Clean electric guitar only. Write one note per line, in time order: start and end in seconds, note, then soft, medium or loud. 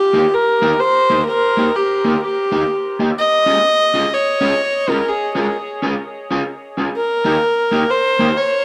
0.13 0.25 A#3 medium
0.13 0.25 D#4 medium
0.13 0.25 G4 medium
0.62 0.72 A#3 medium
0.62 0.73 D#4 medium
0.62 0.73 G4 loud
1.10 1.20 A#3 medium
1.10 1.20 D#4 medium
1.10 1.21 G4 medium
1.57 1.67 A#3 medium
1.57 1.68 D#4 medium
1.57 1.68 G4 medium
2.04 2.15 A#3 medium
2.04 2.15 D#4 medium
2.04 2.15 G4 medium
2.51 2.62 A#3 medium
2.51 2.63 D#4 medium
2.51 2.63 G4 medium
2.99 3.10 A#3 medium
2.99 3.10 D#4 medium
2.99 3.10 G4 loud
3.46 3.57 C#4 medium
3.46 3.57 F4 medium
3.46 3.57 G#4 loud
3.94 4.04 C#4 medium
3.94 4.05 F4 loud
3.94 4.05 G#4 loud
4.41 4.52 C#4 loud
4.41 4.52 F4 loud
4.41 4.52 G#4 loud
4.88 4.99 C#4 medium
4.88 4.99 F4 medium
4.88 4.99 G#4 medium
5.35 5.46 C#4 medium
5.35 5.46 F4 medium
5.35 5.47 G#4 medium
5.82 5.93 C#4 medium
5.82 5.94 F4 medium
5.82 5.94 G#4 loud
6.31 6.41 C#4 loud
6.31 6.41 F4 medium
6.31 6.42 G#4 loud
6.77 6.88 C#4 medium
6.77 6.88 F4 medium
6.77 6.89 G#4 medium
7.24 7.35 A#3 medium
7.24 7.36 D#4 loud
7.24 7.36 G4 loud
7.71 7.83 A#3 medium
7.71 7.83 D#4 medium
7.71 7.83 G4 loud
8.19 8.30 A#3 medium
8.19 8.31 D#4 medium
8.19 8.31 G4 loud